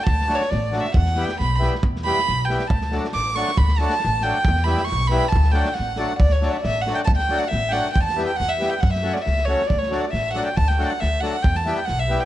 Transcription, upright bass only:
X:1
M:2/4
L:1/8
Q:"Swing 16ths" 1/4=137
K:D
V:1 name="Upright bass" clef=bass
D,,2 A,,,2 | E,,2 B,,,2 | E,,2 B,,,2 | D,,2 A,,,2 |
D,,2 A,,,2 | E,,2 B,,,2 | D,,2 A,,,2 | D,,2 A,,,2 |
D,,2 A,,,2 | E,,2 E,,2 | F,,2 C,,2 | D,,2 A,,,2 |
D,,2 D,,2 | E,,2 B,,,2 |]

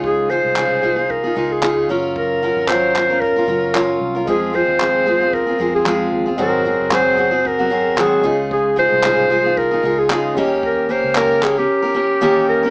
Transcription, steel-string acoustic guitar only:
X:1
M:4/4
L:1/16
Q:"Swing 16ths" 1/4=113
K:Db
V:1 name="Steel-string acoustic guitar"
[D,A,EFA]2 [A,EFA]2 [D,A,EFA]2 [A,EFA] [EFA]2 [EFA] [A,EFA]2 [D,A,EFA]2 [G,DFB]2- | [G,DFB]2 [G,DFB]2 [G,DFB]2 [G,DFB] [DFB]2 [DFB] [G,DFB]2 [G,DFB]3 [DFB] | [F,A,CFA]2 [A,CFA]2 [F,A,CFA]2 [A,CFA] [CFA]2 [CFA] [A,CFA]2 [F,A,CFA]3 [CFA] | [A,,E,G,CGA]2 [G,CGA]2 [A,,E,G,CGA]2 [G,CGA] [G,CGA]2 [G,CGA] [G,CGA]2 [A,,E,G,CGA]2 [D,A,EFA]2- |
[D,A,EFA]2 [A,EFA]2 [D,A,EFA]2 [A,EFA] [EFA]2 [EFA] [A,EFA]2 [D,A,EFA]2 [E,B,D=GB]2- | [E,B,D=GB]2 [B,DGB]2 [E,B,DGB]2 [B,DGB] [DGB]2 [DGB] [B,DGB]2 [E,B,DGB]3 [DGB] |]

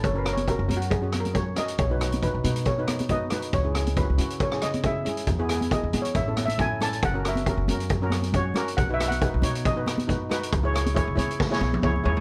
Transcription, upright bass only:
X:1
M:4/4
L:1/16
Q:"Swing 16ths" 1/4=137
K:F#dor
V:1 name="Upright bass" clef=bass
F,,,4- F,,, F,,, F,,8 z2 | B,,,4- B,,, B,,, B,,8 z2 | C,,4- C,, C,, C,8 z2 | E,,4- E,, E,, E,2 A,,,8 |
F,,,4- F,,, F,,, F,,8 z2 | B,,,4- B,,, B,,, B,,8 z2 | C,,4- C,, C,, C,4 B,,,2 C,,2 D,,2 |]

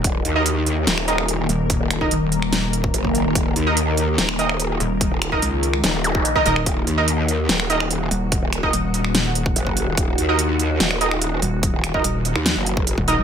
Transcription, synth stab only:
X:1
M:4/4
L:1/16
Q:1/4=145
K:Ebm
V:1 name="Synth stab"
z3 [EBe] z6 [EBe] z4 z | z3 [EBe] z12 | z3 [EBe] z6 [EBe] z4 z | z3 [EBe] z8 z [EBe] [EBe] z |
z3 [EBe] z6 [EBe] z4 z | z3 [EBe] z12 | z3 [EBe] z6 [EBe] z4 z | z3 [EBe] z8 z2 [EBe] z |]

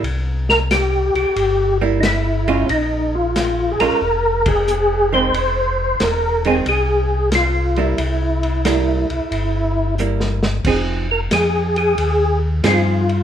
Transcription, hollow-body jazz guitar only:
X:1
M:4/4
L:1/8
Q:"Swing" 1/4=90
K:Fm
V:1 name="Hollow-body jazz guitar"
z4 z [G,B,=E] z [A,DF] | z3 [A,DF] z3 [E,A,C] | z3 [E,A,C] z3 [G,B,=E] | z2 [G,B,=E] z3 [G,B,E] z |
[F,CEA] z4 z [F,CEA] z |]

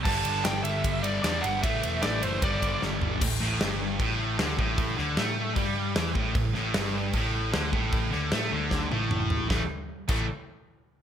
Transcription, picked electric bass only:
X:1
M:4/4
L:1/8
Q:1/4=152
K:G
V:1 name="Picked electric bass" clef=bass
G,,, G,,, G,,, G,,, G,,,2 E,, G,,, | A,,, E,,, A,,, F,,, G,,,2 G,,, G,,, | A,,, A,,, G,,,2 A,,,2 D,, A,,,- | A,,, D,, A,,2 G,,2 E,, A,,, |
A,,, A,,, G,,,2 A,,,2 D,, A,,,- | A,,, D,, A,, D,,2 A,,,3 | A,,, z2 A,,, z4 |]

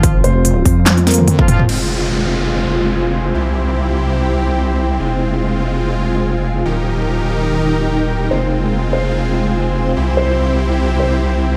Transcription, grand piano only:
X:1
M:4/4
L:1/8
Q:"Swing 16ths" 1/4=145
K:Fm
V:1 name="Grand piano"
z [Cc]4 [B,B]3 | z8 | z8 | z8 |
z8 | c3 c3 z2 | z c4 c3 |]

